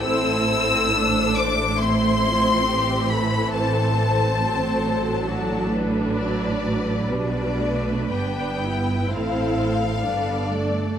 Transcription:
<<
  \new Staff \with { instrumentName = "Violin section" } { \time 4/4 \key d \dorian \tempo 4 = 67 e'''4. d'''8 c'''4. b''8 | a''2~ a''8 r4. | d''4 g''4 f''4. d''8 | }
  \new Staff \with { instrumentName = "Violin section" } { \time 4/4 \key d \dorian << { c''4 c''4 c''2 | c''2 a'4 d''4 | b'2 c''8 c''8 d''4 | } \\ { a'4 a'4 e'4 g'8 a'8~ | a'4 a'4 fis'8 b'4.~ | b'2 a'4 a'4 | } >> }
  \new Staff \with { instrumentName = "Viola section" } { \time 4/4 \key d \dorian << { e'4 d'4 c'2 | c'2 d'2 | d'4 d'8 e'4. d'4 | } \\ { c'8 c'8 a4 a8 f8 e4~ | e4 fis2 fis8 fis8 | g8 a8 b4 c'4 b8 a8 | } >> }
  \new Staff \with { instrumentName = "Cello section" } { \clef bass \time 4/4 \key d \dorian a,1 | a,1 | b,4 g,4 a,4 g,4 | }
  \new Staff \with { instrumentName = "Double bass section" } { \clef bass \time 4/4 \key d \dorian a,,1 | a,,1 | b,,4 g,,4 a,,4 g,,4 | }
>>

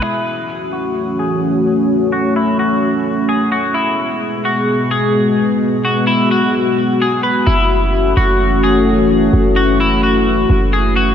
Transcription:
<<
  \new Staff \with { instrumentName = "Clean electric guitar" } { \time 4/4 \key fis \minor \tempo 4 = 129 e'4. fis'4 gis'4. | r8 fis'8 e'8 fis'4. gis'8 fis'8 | e'4. fis'4 gis'4. | r8 fis'8 e'8 fis'8 r4 gis'8 b'8 |
e'4. fis'4 gis'4. | r8 fis'8 e'8 fis'4. gis'8 fis'8 | }
  \new Staff \with { instrumentName = "Analog synth pad" } { \time 4/4 \key fis \minor << { fis'1~ | fis'1 | gis'1 | fis'1 |
fis'1~ | fis'1 | } \\ { <e a cis'>1~ | <e a cis'>1 | <b, gis b>1~ | <b, gis b>1 |
<e a cis'>1~ | <e a cis'>1 | } >> }
  \new Staff \with { instrumentName = "808-style bass" } { \clef bass \time 4/4 \key fis \minor r1 | r1 | r1 | r1 |
fis,,4. fis,,2~ fis,,8 | fis,,2~ fis,,8 fis,,4. | }
>>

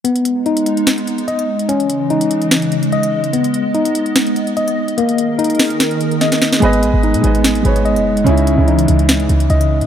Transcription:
<<
  \new Staff \with { instrumentName = "Felt piano" } { \time 4/4 \key gis \minor \tempo 4 = 146 r1 | r1 | r1 | r1 |
<gis gis' b' dis''>4~ <gis gis' b' dis''>16 r16 <gis gis' b' dis''>8. r16 <gis gis' b' cis''>4~ <gis gis' b' cis''>16 r16 | <cis cis' dis' e'>8 r16 <cis cis' dis' e'>4.~ <cis cis' dis' e'>16 r4. | }
  \new Staff \with { instrumentName = "Tine electric piano" } { \time 4/4 \key gis \minor b4 dis'2 dis''4 | cis'4 dis'2 dis''4 | b4 dis'2 dis''4 | ais4 dis'2 dis''4 |
b4 dis'2 dis''4 | cis'4 dis'2 dis''4 | }
  \new Staff \with { instrumentName = "Analog synth pad" } { \clef bass \time 4/4 \key gis \minor << { <b dis'>1 | <cis e dis''>1 | b1 | <dis gis' ais'>1 |
b1 | <cis e>1 | } \\ { gis1 | gis1~ | gis1 | r1 |
gis1~ | gis1 | } >> }
  \new Staff \with { instrumentName = "808-style bass" } { \clef bass \time 4/4 \key gis \minor r1 | r1 | r1 | r1 |
gis,,8 ais,,16 gis,,8 b,16 gis,,4 gis,,8. fis,,8. | cis,8. cis,8. cis,4 cis,8 cis,8. cis16 | }
  \new DrumStaff \with { instrumentName = "Drums" } \drummode { \time 4/4 hh16 hh16 hh8 hh16 hh16 hh16 hh16 <hh sn>16 hh16 hh16 hh16 hh16 hh8 hh16 | hh16 hh16 hh8 hh16 hh16 hh16 hh16 <hh sn>16 hh16 hh16 hh16 hh16 hh8 hh16 | hh16 hh16 hh8 hh16 hh16 hh16 hh16 <hh sn>16 hh16 hh16 hh16 hh16 hh8 hh16 | hh16 hh16 hh8 hh32 hh32 hh32 hh32 <hho sn>16 hh16 <hh sn>16 hh16 hh16 hh16 <hh sn>16 <hh sn>16 sn16 <hh sn>16 |
hh16 hh16 hh8 hh16 hh16 hh16 hh16 <hh sn>16 hh16 hh16 hh16 hh16 hh8 hh16 | hh16 hh16 hh8 hh16 hh16 hh16 hh16 <hh sn>16 hh16 hh16 hh16 hh16 hh8 hh16 | }
>>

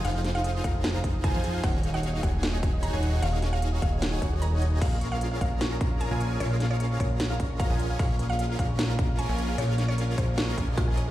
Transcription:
<<
  \new Staff \with { instrumentName = "Synth arpeggio sound" } { \time 4/4 \key bes \minor \tempo 4 = 151 aes'16 f''16 aes'16 f''16 ees'''16 ees'''16 aes'16 f''16 aes'16 f''16 ees'''16 ees'''16 aes'16 f''16 aes'16 f''16 | aes''16 aes''16 aes'16 ees''16 aes'16 ees''16 aes''16 aes''16 aes'16 ees''16 aes'16 ees''16 aes''16 aes''16 aes'16 ees''16 | aes'16 ees''16 aes''16 aes''16 aes'16 ees''16 aes'16 ees''16 aes''16 aes''16 aes'16 aes'16 bes'16 aes'16 des''16 aes'16 | aes'16 f''16 des'''16 des'''16 bes'16 f''16 aes'16 f''16 des'''16 des'''16 bes'16 f''16 aes'16 f''16 des'''16 des'''16 |
bes'16 f''16 aes'16 f''16 des'''16 des'''16 bes'16 f''16 aes'16 f''16 des'''16 des'''16 bes'16 f''16 aes'16 f''16 | des'''16 des'''16 bes'16 f''16 aes'16 f''16 des'''16 des'''16 bes'16 f''16 aes'16 f''16 des'''16 des'''16 bes'16 f''16 | aes'16 f''16 des'''16 des'''16 bes'16 f''16 aes'16 f''16 des'''16 des'''16 aes'16 f''16 aes'16 aes''16 des''16 aes'16 | }
  \new Staff \with { instrumentName = "Synth pluck" } { \time 4/4 \key bes \minor f''8 r16 f''8 r16 f''8 r4 aes''8 r8 | ges''8 r16 ges''8 r16 ges''8 r4 bes''8 r8 | f''8 r16 f''8 r16 f''8 r4 bes''8 r8 | f''8 r16 f''8 r16 f''8 r4 aes''8 r8 |
des''8 r16 des''8 r16 des''8 r4 f''8 r8 | f''8 r16 f''8 r16 f''8 r4 aes''8 r8 | des''8 r16 des''8 r16 c''8 r4 f'8 r8 | }
  \new Staff \with { instrumentName = "Supersaw synth" } { \time 4/4 \key bes \minor <ees' f' aes' c'' f''>4. <ees' aes' bes''>4.~ <ees' aes' bes''>16 <ees' f' aes' c'' aes''>8. | <ees' ges' aes' des'' f''>4. <aes' des'' aes''>4.~ <aes' des'' aes''>16 <ees' ges' aes' des'' ges''>8. | <ees' ges' aes' des'' f''>4. <ees' ges' aes' des'' aes''>4 <ees' ges' aes' des'' ges''>16 <ees' ges' aes' des'' ees''>4~ <ees' ges' aes' des'' ees''>16 | <des' f' aes' bes' f''>4. <des' f' aes' bes' bes''>4.~ <des' f' aes' bes' bes''>16 <des' f' aes' bes' aes''>8. |
<des' f' aes' bes' f''>4. <f' aes' bes' bes''>4.~ <f' aes' bes' bes''>16 <des' f' aes' bes' aes''>8. | <des' f' aes' bes' f''>4. <des' f' aes' bes''>4.~ <des' f' aes' bes''>16 <des' f' aes' bes' aes''>8. | <des' f' aes' bes' f''>4. aes'4 <des' f' aes' bes' aes''>16 <des' f' aes' bes' ees''>4~ <des' f' aes' bes' ees''>16 | }
  \new Staff \with { instrumentName = "Analog synth bass" } { \clef bass \time 4/4 \key bes \minor f,,4. f,,4.~ f,,16 f,8. | ees,,4. ees,,4.~ ees,,16 ees,,8. | ees,,4. ees,,4 ees,,16 ees,,4~ ees,,16 | bes,,4. bes,,4.~ bes,,16 bes,,8. |
bes,,4. bes,,4.~ bes,,16 bes,,8. | bes,,4. bes,,4.~ bes,,16 bes,,8. | bes,,4. bes,,4 bes,,16 bes,,4~ bes,,16 | }
  \new DrumStaff \with { instrumentName = "Drums" } \drummode { \time 4/4 <cymc hh>8 <hh sn>8 hh8 <hh bd>8 <hh sn>8 <hh bd>8 <hh bd>8 hh8 | <cymc hh bd>8 hh8 hh8 <hh bd>8 <hh sn>8 <hh bd>8 hh8 hh8 | <cymc hh>8 <hh sn>8 hh8 <hh bd>8 <hh sn>8 <hh bd>8 hh8 hh8 | <cymc hh bd>8 hh8 hh8 <hh bd>8 <hh sn>8 <hh bd>8 hh8 hh8 |
<cymc hh>8 <hh sn>8 hh8 <hh bd>8 <hh sn>8 <hh bd>8 <hh bd>8 hh8 | <cymc hh bd>8 hh8 hh8 <hh bd>8 <hh sn>8 <hh bd>8 hh8 hh8 | <cymc hh>8 <hh sn>8 hh8 <hh bd>8 <hh sn>8 <hh bd>8 <hh bd>8 hh8 | }
>>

